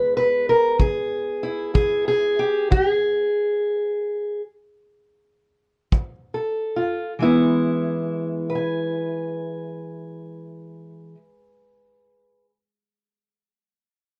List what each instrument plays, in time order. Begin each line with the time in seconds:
Already playing: steel-string acoustic guitar E3 G#3 B3 E4 B4
0.17 steel-string acoustic guitar B4
0.49 steel-string acoustic guitar A#4
0.79 steel-string acoustic guitar E3 G#4, kick
1.43 steel-string acoustic guitar E4
1.74 steel-string acoustic guitar E3 G#4, kick
2.08 steel-string acoustic guitar G#4
2.39 steel-string acoustic guitar G4
2.70 steel-string acoustic guitar E3 G4, kick
2.89 steel-string acoustic guitar G#4
5.92 steel-string acoustic guitar F3, kick
6.34 steel-string acoustic guitar A4
6.76 steel-string acoustic guitar F4
7.19 steel-string acoustic guitar E3 G#3 B3 E4
8.50 steel-string acoustic guitar B4
8.55 steel-string acoustic guitar G#5